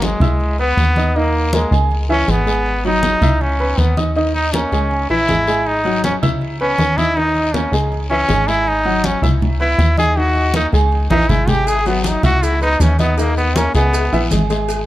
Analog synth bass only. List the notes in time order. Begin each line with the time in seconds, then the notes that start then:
Already playing: G#1
0.20 C#2
0.77 D#2
1.71 C#2
2.28 G#1
3.22 C#2
3.78 D#2
4.72 C#2
5.10 A#1
5.29 G#1
6.23 C#2
6.79 D#2
7.72 C#2
8.29 G#1
9.22 C#2
9.79 D#2
10.73 C#2
11.11 A#1
11.29 G#1
12.24 C#2
12.80 D#2
13.75 C#2
14.13 A#1
14.32 G#1